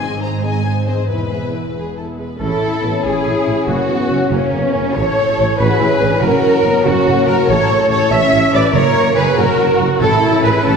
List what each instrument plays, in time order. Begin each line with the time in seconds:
Already playing: double bass section G#1, harp G#2 G#3 D#4 C5, cello section G#2, violin section G#5
0.00 viola section G#3 C4, violin section G#4 D#5
0.20 viola section C4 D#4, violin section C5 A#5
0.43 viola section G#3 C4, violin section G#4 D#5 G#5
0.64 viola section C4 D#4, violin section C5
0.85 viola section G#3 C4, violin section G#4 C5 D#5
0.91 harp E2
0.96 harp G#3 E4
1.04 harp B4, violin section B4
1.10 double bass section E1, cello section E2, viola section B3 E4, violin section B4
1.30 viola section G#3 B3, violin section G#4 E5
1.52 viola section B3 E4, violin section B4
1.76 viola section G#3 B3, violin section G#4
1.97 viola section B3 E4, violin section A4
2.19 viola section G#3 B3, violin section B4
2.40 double bass section A1, tuba A1, harp A2, viola section C#4, violin section E4 A4, trumpet section A4, cello section A4
2.62 harp A3, viola section E4
2.83 double bass section A1, tuba A1, viola section B3, harp C#5
3.04 tuba A1, double bass section A1, viola section C#4, violin section E4 G#4, cello section G#4, trumpet section G#4, harp E5
3.25 tuba A1, double bass section A1, harp C#5
3.46 double bass section A1, tuba A1, harp E4
3.67 tuba F#1, double bass section F#1, harp F#2, viola section A#3, violin section C#4 F#4, cello section F#4, trumpet section F#4
3.88 harp A#3, viola section B3
4.09 double bass section F#1, tuba F#1, viola section C#4, harp C#5
4.30 tuba F#1, double bass section F#1, violin section A#3 C#4, viola section A#3, cello section C#4, trumpet section C#4
4.53 double bass section F#1, tuba F#1, viola section B3
4.73 tuba F#1, double bass section F#1, viola section A#3, harp F#4
4.94 tuba A1, double bass section A1, harp A2, viola section A3, violin section A4 C#5, cello section C#5, trumpet section C#5
5.16 harp C#4
5.38 tuba A1, double bass section A1
5.57 double bass section A1, tuba A1, viola section F#4, violin section G#4 B4, cello section B4, trumpet section B4, harp E5
5.79 tuba A1, double bass section A1, viola section E4, harp C#5
6.00 tuba A1, double bass section A1, viola section D4, harp E4
6.21 tuba F#1, double bass section F#1, harp F#2, viola section C#4, violin section F#4 A#4, trumpet section A#4, cello section A#4
6.42 viola section C#4, harp C#4
6.63 tuba F#1, double bass section F#1, viola section B3, harp C#5
6.84 tuba F#1, double bass section F#1, viola section A#3, violin section C#4 F#4, trumpet section F#4, cello section F#4, harp F#5
7.05 tuba F#1, double bass section F#1, harp C#5
7.26 tuba F#1, double bass section F#1, harp F#4, violin section F#4 A#4, trumpet section A#4, cello section A#4
7.47 tuba A1, double bass section A1, harp A2, viola section A3, violin section A4 C#5, cello section C#5, trumpet section C#5
7.68 harp C#4
7.89 tuba A1, double bass section A1, violin section A4 C#5, harp C#5, trumpet section C#5, cello section C#5
8.11 double bass section A1, tuba A1, viola section C#4, violin section C#5 E5, cello section E5, trumpet section E5, harp E5
8.32 tuba A1, double bass section A1, harp C#5
8.53 tuba A1, double bass section A1, harp E4, violin section B4 D5, trumpet section D5, cello section D5
8.73 tuba F#1, double bass section F#1, harp F#2, viola section A#3, violin section A#4 C#5, cello section C#5, trumpet section C#5
8.95 harp C#4
9.15 tuba F#1, double bass section F#1, violin section G#4 B4, harp A#4, cello section B4, trumpet section B4
9.37 double bass section F#1, tuba F#1, violin section F#4 A#4, viola section F#4, trumpet section A#4, cello section A#4, harp F#5
9.58 double bass section F#1, tuba F#1, harp A#4
9.78 double bass section F#1, tuba F#1, harp F#4
10.01 double bass section A1, tuba A1, timpani A2, harp A2, viola section E4, violin section E4 A4, cello section A4, trumpet section A4
10.22 harp C#4
10.44 tuba A1, double bass section A1, violin section G#4 B4, harp A4, cello section B4, trumpet section B4
10.64 double bass section A1, tuba A1, viola section C#4, violin section E4 A4, trumpet section A4, cello section A4, harp E5